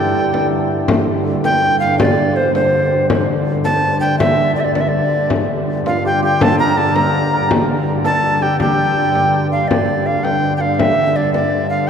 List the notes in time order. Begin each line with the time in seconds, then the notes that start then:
Already playing: G2 D3 D4 E4 G4 A4 G5
0.34 frame drum
0.52 frame drum
0.88 G2 D3, frame drum
1.44 G5, frame drum
1.80 F5
1.99 D5, frame drum
2.36 C5
2.55 C5, frame drum
3.10 frame drum
3.64 A5, frame drum
4.00 G5
4.19 E5, frame drum
4.56 D5
4.60 E5
4.64 D5
4.75 D5, frame drum
4.81 E5
4.88 D5
5.12 frame drum
5.30 G2 D3, frame drum
5.86 F4 F5, frame drum
6.05 G4 G5
6.22 G4 G5
6.41 A4 A5, frame drum
6.59 A#4 A#5
6.77 A4 A5
6.95 A#4 A#5, frame drum
7.33 A#4
7.51 frame drum
8.04 A4 A5, frame drum
8.37 A4
8.42 G4 G5
8.60 G4 G5, frame drum
8.78 frame drum
8.96 frame drum
9.15 frame drum
9.34 frame drum
9.52 F5
9.68 G2 D3 D5, frame drum
10.06 F5, frame drum
10.24 G5, frame drum
10.57 G5
10.61 F5
10.74 F5
10.79 E5, frame drum
11.16 D5, frame drum
11.34 D5, frame drum
11.70 F5